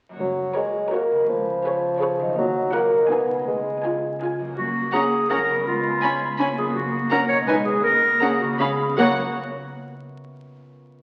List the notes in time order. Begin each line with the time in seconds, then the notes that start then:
0.09 F#2 A#3 F#4
0.16 F#1 F#2 C#5
0.21 F#3
0.56 G#3 F#4 A#4 C#5
0.93 A#3 F#4 A#4 C#5
1.11 C#3
1.15 G#3
1.20 G#4
1.24 B4
1.29 C#2 F3
1.65 G#4 B4 C#5
2.00 G#4 B4 C#5
2.19 D#3
2.24 F#3
2.28 D#4
2.33 A#4
2.37 D#2 F#3
2.74 A#3 F#4 A#4 F#5
2.92 B2
2.96 G#3
3.01 D#4
3.05 G#4
3.10 B1 B2 B3 D#4 G#4 G#5
3.29 C#3
3.34 G#3
3.38 F4
3.43 G#4
3.47 C#2 G#3
3.84 F4 G#4 G#5
4.21 F4 G#4 G#5
4.39 F#2
4.44 A#3
4.49 C#4
4.53 F#4
4.57 F#2 A#3 F#4
4.93 C#4 G#4 F#5 A#5
5.30 F#3 C#4 A#4 F#5 A#5
5.48 C#3
5.53 B3
5.57 C#4
5.62 G#4
5.66 C#2 G#3 F4
6.03 G#3 C#4 G#5 B5
6.38 A#3 C#4 G#5 B5
6.57 F#2 G#4
6.61 A#3
6.66 C#4
6.70 F#4
6.75 F#1 F#4
7.11 C#4 A#4 F#5 A#5
7.29 B2 C#5
7.34 G#3
7.38 D#4
7.43 G#4
7.47 B1 G#3 D#4 B4 D#5 G#5
7.65 C#3 G#4
7.71 A#3
7.75 C#4
7.80 F#4 A#4
7.85 C#2 A#3
8.21 C#4 G#4 F#5 A#5
8.40 C#3 F#4
8.46 B3
8.50 C#4
8.55 F4
8.59 C#2 B3 C#4 G#4 F5 B5
8.91 F#2 F#3
8.96 F#1 F#2 A#3 C#4 F#4 C#5 F#5
9.01 F#4 C#5